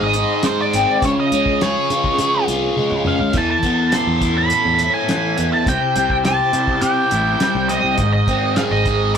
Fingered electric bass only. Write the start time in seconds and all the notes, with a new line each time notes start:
0.01 G#1
0.74 G#1
1.02 C#2
1.32 C#2
1.90 C#3
2.18 C#3
2.47 C2
2.91 C#2
3.20 C#2
3.34 E2
4.07 E2
4.65 E2
5.38 E2
5.67 C2
5.96 C2
6.53 C3
6.82 C3
7.12 A1
7.55 C2
7.83 C2
7.98 G#1
8.71 G#1